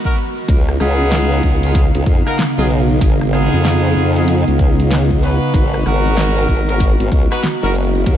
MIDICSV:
0, 0, Header, 1, 5, 480
1, 0, Start_track
1, 0, Tempo, 631579
1, 369, Time_signature, 4, 2, 24, 8
1, 6209, End_track
2, 0, Start_track
2, 0, Title_t, "Horn section"
2, 0, Program_c, 0, 61
2, 39, Note_on_c, 0, 59, 94
2, 39, Note_on_c, 0, 63, 81
2, 39, Note_on_c, 0, 66, 84
2, 40, Note_on_c, 0, 70, 100
2, 119, Note_off_c, 0, 59, 0
2, 119, Note_off_c, 0, 63, 0
2, 119, Note_off_c, 0, 66, 0
2, 119, Note_off_c, 0, 70, 0
2, 609, Note_on_c, 0, 65, 92
2, 610, Note_on_c, 0, 59, 104
2, 610, Note_on_c, 0, 63, 90
2, 610, Note_on_c, 0, 68, 106
2, 1203, Note_off_c, 0, 65, 0
2, 1203, Note_off_c, 0, 68, 0
2, 1204, Note_off_c, 0, 59, 0
2, 1204, Note_off_c, 0, 63, 0
2, 1241, Note_on_c, 0, 59, 82
2, 1241, Note_on_c, 0, 63, 76
2, 1241, Note_on_c, 0, 68, 90
2, 1243, Note_on_c, 0, 65, 77
2, 1394, Note_off_c, 0, 59, 0
2, 1394, Note_off_c, 0, 63, 0
2, 1394, Note_off_c, 0, 68, 0
2, 1395, Note_off_c, 0, 65, 0
2, 1720, Note_on_c, 0, 59, 101
2, 1721, Note_on_c, 0, 63, 95
2, 1721, Note_on_c, 0, 65, 90
2, 1721, Note_on_c, 0, 70, 114
2, 1800, Note_off_c, 0, 59, 0
2, 1800, Note_off_c, 0, 63, 0
2, 1800, Note_off_c, 0, 65, 0
2, 1800, Note_off_c, 0, 70, 0
2, 1962, Note_on_c, 0, 63, 78
2, 1962, Note_on_c, 0, 65, 87
2, 1962, Note_on_c, 0, 68, 100
2, 1963, Note_on_c, 0, 59, 88
2, 2040, Note_off_c, 0, 65, 0
2, 2040, Note_off_c, 0, 68, 0
2, 2041, Note_off_c, 0, 59, 0
2, 2041, Note_off_c, 0, 63, 0
2, 2531, Note_on_c, 0, 59, 94
2, 2532, Note_on_c, 0, 63, 94
2, 2532, Note_on_c, 0, 65, 90
2, 2533, Note_on_c, 0, 68, 107
2, 3124, Note_off_c, 0, 59, 0
2, 3124, Note_off_c, 0, 63, 0
2, 3125, Note_off_c, 0, 65, 0
2, 3125, Note_off_c, 0, 68, 0
2, 3162, Note_on_c, 0, 63, 76
2, 3162, Note_on_c, 0, 65, 73
2, 3162, Note_on_c, 0, 68, 85
2, 3163, Note_on_c, 0, 59, 82
2, 3314, Note_off_c, 0, 65, 0
2, 3315, Note_off_c, 0, 59, 0
2, 3315, Note_off_c, 0, 63, 0
2, 3315, Note_off_c, 0, 68, 0
2, 3973, Note_on_c, 0, 59, 86
2, 3973, Note_on_c, 0, 63, 81
2, 3973, Note_on_c, 0, 71, 94
2, 3974, Note_on_c, 0, 66, 75
2, 4429, Note_off_c, 0, 59, 0
2, 4429, Note_off_c, 0, 63, 0
2, 4429, Note_off_c, 0, 71, 0
2, 4430, Note_off_c, 0, 66, 0
2, 4451, Note_on_c, 0, 59, 99
2, 4451, Note_on_c, 0, 66, 93
2, 4452, Note_on_c, 0, 63, 94
2, 4452, Note_on_c, 0, 70, 105
2, 5044, Note_off_c, 0, 59, 0
2, 5044, Note_off_c, 0, 66, 0
2, 5044, Note_off_c, 0, 70, 0
2, 5045, Note_off_c, 0, 63, 0
2, 5081, Note_on_c, 0, 70, 95
2, 5082, Note_on_c, 0, 59, 81
2, 5082, Note_on_c, 0, 63, 75
2, 5082, Note_on_c, 0, 66, 75
2, 5234, Note_off_c, 0, 63, 0
2, 5234, Note_off_c, 0, 70, 0
2, 5235, Note_off_c, 0, 59, 0
2, 5235, Note_off_c, 0, 66, 0
2, 5558, Note_on_c, 0, 59, 103
2, 5558, Note_on_c, 0, 66, 95
2, 5559, Note_on_c, 0, 63, 97
2, 5559, Note_on_c, 0, 71, 116
2, 5639, Note_off_c, 0, 59, 0
2, 5639, Note_off_c, 0, 63, 0
2, 5639, Note_off_c, 0, 66, 0
2, 5639, Note_off_c, 0, 71, 0
2, 5796, Note_on_c, 0, 59, 90
2, 5796, Note_on_c, 0, 63, 80
2, 5796, Note_on_c, 0, 66, 80
2, 5796, Note_on_c, 0, 70, 99
2, 5877, Note_off_c, 0, 63, 0
2, 5878, Note_off_c, 0, 59, 0
2, 5878, Note_off_c, 0, 66, 0
2, 5878, Note_off_c, 0, 70, 0
2, 6209, End_track
3, 0, Start_track
3, 0, Title_t, "Ambient pad"
3, 0, Program_c, 1, 92
3, 0, Note_on_c, 1, 56, 88
3, 0, Note_on_c, 1, 59, 96
3, 0, Note_on_c, 1, 66, 78
3, 340, Note_off_c, 1, 56, 0
3, 340, Note_off_c, 1, 66, 0
3, 341, Note_off_c, 1, 59, 0
3, 363, Note_on_c, 1, 49, 86
3, 364, Note_on_c, 1, 77, 92
3, 365, Note_on_c, 1, 63, 81
3, 366, Note_on_c, 1, 59, 78
3, 4175, Note_off_c, 1, 49, 0
3, 4176, Note_off_c, 1, 77, 0
3, 4177, Note_off_c, 1, 59, 0
3, 4177, Note_off_c, 1, 63, 0
3, 4212, Note_on_c, 1, 59, 91
3, 4214, Note_on_c, 1, 66, 79
3, 4215, Note_on_c, 1, 56, 84
3, 6209, Note_off_c, 1, 56, 0
3, 6209, Note_off_c, 1, 59, 0
3, 6209, Note_off_c, 1, 66, 0
3, 6209, End_track
4, 0, Start_track
4, 0, Title_t, "Wobble bass"
4, 0, Program_c, 2, 39
4, 368, Note_on_c, 2, 37, 97
4, 594, Note_off_c, 2, 37, 0
4, 608, Note_on_c, 2, 37, 105
4, 1074, Note_off_c, 2, 37, 0
4, 1089, Note_on_c, 2, 37, 103
4, 1455, Note_off_c, 2, 37, 0
4, 1481, Note_on_c, 2, 37, 99
4, 1555, Note_off_c, 2, 37, 0
4, 1568, Note_on_c, 2, 41, 95
4, 1695, Note_off_c, 2, 41, 0
4, 1960, Note_on_c, 2, 35, 93
4, 2275, Note_off_c, 2, 35, 0
4, 2288, Note_on_c, 2, 32, 92
4, 2655, Note_off_c, 2, 32, 0
4, 2683, Note_on_c, 2, 41, 102
4, 2996, Note_off_c, 2, 41, 0
4, 3012, Note_on_c, 2, 41, 100
4, 3377, Note_off_c, 2, 41, 0
4, 3402, Note_on_c, 2, 37, 94
4, 4096, Note_off_c, 2, 37, 0
4, 4210, Note_on_c, 2, 32, 95
4, 4435, Note_off_c, 2, 32, 0
4, 4452, Note_on_c, 2, 32, 103
4, 4916, Note_off_c, 2, 32, 0
4, 4929, Note_on_c, 2, 32, 97
4, 5295, Note_off_c, 2, 32, 0
4, 5318, Note_on_c, 2, 32, 92
4, 5394, Note_off_c, 2, 32, 0
4, 5411, Note_on_c, 2, 37, 91
4, 5536, Note_off_c, 2, 37, 0
4, 5798, Note_on_c, 2, 30, 91
4, 6114, Note_off_c, 2, 30, 0
4, 6128, Note_on_c, 2, 39, 95
4, 6209, Note_off_c, 2, 39, 0
4, 6209, End_track
5, 0, Start_track
5, 0, Title_t, "Drums"
5, 39, Note_on_c, 9, 36, 63
5, 43, Note_on_c, 9, 82, 21
5, 115, Note_off_c, 9, 36, 0
5, 119, Note_off_c, 9, 82, 0
5, 132, Note_on_c, 9, 82, 73
5, 208, Note_off_c, 9, 82, 0
5, 282, Note_on_c, 9, 82, 30
5, 358, Note_off_c, 9, 82, 0
5, 368, Note_on_c, 9, 36, 127
5, 370, Note_on_c, 9, 42, 82
5, 370, Note_on_c, 9, 82, 39
5, 444, Note_off_c, 9, 36, 0
5, 446, Note_off_c, 9, 42, 0
5, 446, Note_off_c, 9, 82, 0
5, 521, Note_on_c, 9, 37, 57
5, 521, Note_on_c, 9, 82, 20
5, 597, Note_off_c, 9, 37, 0
5, 597, Note_off_c, 9, 82, 0
5, 609, Note_on_c, 9, 37, 51
5, 609, Note_on_c, 9, 82, 71
5, 685, Note_off_c, 9, 37, 0
5, 685, Note_off_c, 9, 82, 0
5, 759, Note_on_c, 9, 82, 33
5, 835, Note_off_c, 9, 82, 0
5, 849, Note_on_c, 9, 38, 127
5, 849, Note_on_c, 9, 42, 79
5, 849, Note_on_c, 9, 82, 40
5, 925, Note_off_c, 9, 38, 0
5, 925, Note_off_c, 9, 42, 0
5, 925, Note_off_c, 9, 82, 0
5, 1000, Note_on_c, 9, 82, 20
5, 1076, Note_off_c, 9, 82, 0
5, 1089, Note_on_c, 9, 36, 69
5, 1089, Note_on_c, 9, 82, 67
5, 1165, Note_off_c, 9, 36, 0
5, 1165, Note_off_c, 9, 82, 0
5, 1241, Note_on_c, 9, 42, 54
5, 1241, Note_on_c, 9, 82, 29
5, 1317, Note_off_c, 9, 42, 0
5, 1317, Note_off_c, 9, 82, 0
5, 1328, Note_on_c, 9, 36, 111
5, 1330, Note_on_c, 9, 42, 77
5, 1330, Note_on_c, 9, 82, 38
5, 1404, Note_off_c, 9, 36, 0
5, 1406, Note_off_c, 9, 42, 0
5, 1406, Note_off_c, 9, 82, 0
5, 1480, Note_on_c, 9, 42, 53
5, 1480, Note_on_c, 9, 82, 20
5, 1556, Note_off_c, 9, 42, 0
5, 1556, Note_off_c, 9, 82, 0
5, 1569, Note_on_c, 9, 36, 117
5, 1571, Note_on_c, 9, 82, 70
5, 1645, Note_off_c, 9, 36, 0
5, 1647, Note_off_c, 9, 82, 0
5, 1722, Note_on_c, 9, 37, 54
5, 1722, Note_on_c, 9, 42, 39
5, 1798, Note_off_c, 9, 37, 0
5, 1798, Note_off_c, 9, 42, 0
5, 1815, Note_on_c, 9, 38, 127
5, 1815, Note_on_c, 9, 42, 80
5, 1815, Note_on_c, 9, 82, 39
5, 1891, Note_off_c, 9, 38, 0
5, 1891, Note_off_c, 9, 42, 0
5, 1891, Note_off_c, 9, 82, 0
5, 1964, Note_on_c, 9, 82, 21
5, 2040, Note_off_c, 9, 82, 0
5, 2052, Note_on_c, 9, 82, 74
5, 2128, Note_off_c, 9, 82, 0
5, 2201, Note_on_c, 9, 82, 31
5, 2277, Note_off_c, 9, 82, 0
5, 2289, Note_on_c, 9, 36, 124
5, 2291, Note_on_c, 9, 42, 77
5, 2291, Note_on_c, 9, 82, 41
5, 2365, Note_off_c, 9, 36, 0
5, 2367, Note_off_c, 9, 42, 0
5, 2367, Note_off_c, 9, 82, 0
5, 2442, Note_on_c, 9, 37, 50
5, 2442, Note_on_c, 9, 82, 22
5, 2518, Note_off_c, 9, 37, 0
5, 2518, Note_off_c, 9, 82, 0
5, 2531, Note_on_c, 9, 37, 48
5, 2531, Note_on_c, 9, 82, 70
5, 2607, Note_off_c, 9, 37, 0
5, 2607, Note_off_c, 9, 82, 0
5, 2683, Note_on_c, 9, 42, 35
5, 2683, Note_on_c, 9, 82, 33
5, 2759, Note_off_c, 9, 42, 0
5, 2759, Note_off_c, 9, 82, 0
5, 2772, Note_on_c, 9, 38, 127
5, 2772, Note_on_c, 9, 42, 76
5, 2772, Note_on_c, 9, 82, 39
5, 2848, Note_off_c, 9, 38, 0
5, 2848, Note_off_c, 9, 42, 0
5, 2848, Note_off_c, 9, 82, 0
5, 2923, Note_on_c, 9, 82, 21
5, 2999, Note_off_c, 9, 82, 0
5, 3012, Note_on_c, 9, 82, 68
5, 3088, Note_off_c, 9, 82, 0
5, 3164, Note_on_c, 9, 42, 50
5, 3164, Note_on_c, 9, 82, 30
5, 3240, Note_off_c, 9, 42, 0
5, 3240, Note_off_c, 9, 82, 0
5, 3252, Note_on_c, 9, 42, 77
5, 3252, Note_on_c, 9, 82, 41
5, 3328, Note_off_c, 9, 42, 0
5, 3328, Note_off_c, 9, 82, 0
5, 3403, Note_on_c, 9, 42, 53
5, 3403, Note_on_c, 9, 82, 19
5, 3479, Note_off_c, 9, 42, 0
5, 3479, Note_off_c, 9, 82, 0
5, 3490, Note_on_c, 9, 36, 115
5, 3493, Note_on_c, 9, 82, 73
5, 3566, Note_off_c, 9, 36, 0
5, 3569, Note_off_c, 9, 82, 0
5, 3645, Note_on_c, 9, 42, 37
5, 3645, Note_on_c, 9, 82, 32
5, 3721, Note_off_c, 9, 42, 0
5, 3721, Note_off_c, 9, 82, 0
5, 3734, Note_on_c, 9, 38, 127
5, 3734, Note_on_c, 9, 42, 76
5, 3734, Note_on_c, 9, 82, 40
5, 3810, Note_off_c, 9, 38, 0
5, 3810, Note_off_c, 9, 42, 0
5, 3810, Note_off_c, 9, 82, 0
5, 3881, Note_on_c, 9, 36, 61
5, 3883, Note_on_c, 9, 82, 22
5, 3957, Note_off_c, 9, 36, 0
5, 3959, Note_off_c, 9, 82, 0
5, 3973, Note_on_c, 9, 82, 72
5, 4049, Note_off_c, 9, 82, 0
5, 4123, Note_on_c, 9, 82, 32
5, 4199, Note_off_c, 9, 82, 0
5, 4210, Note_on_c, 9, 36, 122
5, 4214, Note_on_c, 9, 42, 76
5, 4214, Note_on_c, 9, 82, 41
5, 4286, Note_off_c, 9, 36, 0
5, 4290, Note_off_c, 9, 42, 0
5, 4290, Note_off_c, 9, 82, 0
5, 4364, Note_on_c, 9, 37, 52
5, 4364, Note_on_c, 9, 82, 22
5, 4440, Note_off_c, 9, 37, 0
5, 4440, Note_off_c, 9, 82, 0
5, 4453, Note_on_c, 9, 37, 50
5, 4453, Note_on_c, 9, 82, 74
5, 4529, Note_off_c, 9, 37, 0
5, 4529, Note_off_c, 9, 82, 0
5, 4603, Note_on_c, 9, 82, 32
5, 4679, Note_off_c, 9, 82, 0
5, 4693, Note_on_c, 9, 38, 121
5, 4693, Note_on_c, 9, 42, 76
5, 4693, Note_on_c, 9, 82, 41
5, 4769, Note_off_c, 9, 38, 0
5, 4769, Note_off_c, 9, 42, 0
5, 4769, Note_off_c, 9, 82, 0
5, 4842, Note_on_c, 9, 82, 21
5, 4918, Note_off_c, 9, 82, 0
5, 4929, Note_on_c, 9, 36, 62
5, 4933, Note_on_c, 9, 82, 74
5, 5005, Note_off_c, 9, 36, 0
5, 5009, Note_off_c, 9, 82, 0
5, 5084, Note_on_c, 9, 42, 47
5, 5084, Note_on_c, 9, 82, 30
5, 5160, Note_off_c, 9, 42, 0
5, 5160, Note_off_c, 9, 82, 0
5, 5169, Note_on_c, 9, 36, 106
5, 5172, Note_on_c, 9, 42, 73
5, 5172, Note_on_c, 9, 82, 40
5, 5245, Note_off_c, 9, 36, 0
5, 5248, Note_off_c, 9, 42, 0
5, 5248, Note_off_c, 9, 82, 0
5, 5322, Note_on_c, 9, 42, 50
5, 5322, Note_on_c, 9, 82, 21
5, 5398, Note_off_c, 9, 42, 0
5, 5398, Note_off_c, 9, 82, 0
5, 5409, Note_on_c, 9, 36, 105
5, 5411, Note_on_c, 9, 82, 77
5, 5485, Note_off_c, 9, 36, 0
5, 5487, Note_off_c, 9, 82, 0
5, 5561, Note_on_c, 9, 37, 54
5, 5561, Note_on_c, 9, 42, 36
5, 5561, Note_on_c, 9, 82, 33
5, 5637, Note_off_c, 9, 37, 0
5, 5637, Note_off_c, 9, 42, 0
5, 5637, Note_off_c, 9, 82, 0
5, 5650, Note_on_c, 9, 38, 113
5, 5650, Note_on_c, 9, 42, 75
5, 5650, Note_on_c, 9, 82, 42
5, 5726, Note_off_c, 9, 38, 0
5, 5726, Note_off_c, 9, 42, 0
5, 5726, Note_off_c, 9, 82, 0
5, 5800, Note_on_c, 9, 82, 21
5, 5876, Note_off_c, 9, 82, 0
5, 5889, Note_on_c, 9, 82, 76
5, 5965, Note_off_c, 9, 82, 0
5, 6041, Note_on_c, 9, 82, 33
5, 6117, Note_off_c, 9, 82, 0
5, 6128, Note_on_c, 9, 36, 114
5, 6128, Note_on_c, 9, 42, 76
5, 6128, Note_on_c, 9, 82, 43
5, 6204, Note_off_c, 9, 36, 0
5, 6204, Note_off_c, 9, 42, 0
5, 6204, Note_off_c, 9, 82, 0
5, 6209, End_track
0, 0, End_of_file